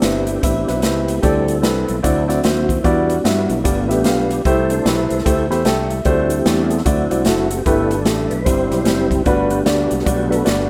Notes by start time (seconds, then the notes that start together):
Already playing: C3 B3 D4 E4 G4
0.02 G1 C4 E4 B4 E5, snare, closed hi-hat
0.27 B3 D4 E4, closed hi-hat
0.42 A1 B3 C4 E4 G4 B4 E5, kick, closed hi-hat
0.68 B1 C4 E4 F#4 B4 E5, snare, closed hi-hat
0.82 C#2 B3 C4 E4 G4 B4 E5, snare, closed hi-hat
1.08 closed hi-hat
1.22 D2 D3 G3 C4 E4 G4 A4 D5, kick, closed hi-hat
1.48 closed hi-hat
1.62 C2 C4 G4 A4 B4, snare, closed hi-hat
1.88 B1, closed hi-hat
2.02 D2 D3 F#3 C4 E4 F#4 D5, kick, closed hi-hat
2.28 C4 E4 F#4 D5, snare, closed hi-hat
2.44 D#2 C4 E4 F#4 C5, snare, closed hi-hat
2.68 E4, kick, closed hi-hat
2.83 E2 E3 G3 B3 D4 E4 F#4 D5, kick, closed hi-hat
3.10 closed hi-hat
3.17 B3 D4 F#4
3.24 G2 G3 E4 F#4 E5, snare, closed hi-hat
3.49 B1 E4, closed hi-hat
3.64 G1 G2 A3 B3 D4 F4 G4 D5, kick, closed hi-hat
3.88 A1 B3 D4 F4 G4 E5, snare, closed hi-hat
3.92 G4
4.04 B1 B3 F4 G4 F5, snare, closed hi-hat
4.30 G4, closed hi-hat
4.45 C2 C3 A3 E4 G4 A4 C5, kick, closed hi-hat
4.70 A3 D4 E4 A4 C5, closed hi-hat
4.85 B1 A3 E4 G4 B4, snare, closed hi-hat
5.10 C2, closed hi-hat
5.18 snare
5.25 D2 A3 E4 G4 C5, kick, closed hi-hat
5.50 E2 A3 E4 G4 C5 B5, snare, closed hi-hat
5.65 C2 A3 D4 E4 G4 A4 G5, snare, closed hi-hat
5.90 E5, closed hi-hat
6.05 D2 D3 G3 A3 C4 D4 E4 F#4 G4 C5, kick, closed hi-hat
6.30 C4 G4, closed hi-hat
6.46 E2 A3 D4 G4 D5, snare, closed hi-hat
6.70 A4, closed hi-hat
6.78 snare
6.85 D2 D3 F#3 A3 C4 E4 F#4 D5, kick, closed hi-hat
7.10 C2 C4 E4 F#4 D5, closed hi-hat
7.25 F#1 C4 E4 F#4 A4, snare, closed hi-hat
7.50 G4, closed hi-hat
7.65 G1 G2 A3 B3 D4 E4 G4 A4 B4, kick, closed hi-hat
7.91 closed hi-hat
8.05 A1 A3 E4 G4 A4, snare, closed hi-hat
8.30 B1 B4, closed hi-hat
8.45 G1 G2 G3 C4 E4 G4 C5, kick, closed hi-hat
8.70 B1 G3 C4 E4 G4, snare, closed hi-hat
8.85 F#1 G3 C4 E4 C5, snare, closed hi-hat
9.11 kick, closed hi-hat
9.24 G1 G2 G3 A3 B3 D4 F#4 B4, kick, closed hi-hat
9.49 B3 D4 G4, closed hi-hat
9.66 D2 G3 D4 F#4 D5, snare, closed hi-hat
9.91 C2, closed hi-hat
9.99 snare
10.06 B1 G3 B3 D4 F#4 G4 D5, kick, closed hi-hat
10.30 G3 D4 F#4 A4 B4, closed hi-hat
10.44 G1 G3 B3 D4 F#4 G4 D5, snare, closed hi-hat